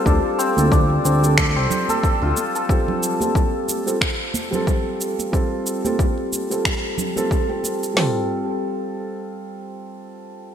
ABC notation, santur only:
X:1
M:4/4
L:1/16
Q:"Swing 16ths" 1/4=91
K:Dm
V:1 name="Santur"
D z C2 D2 C z A C2 A z F2 A | z16 | z16 | z16 |]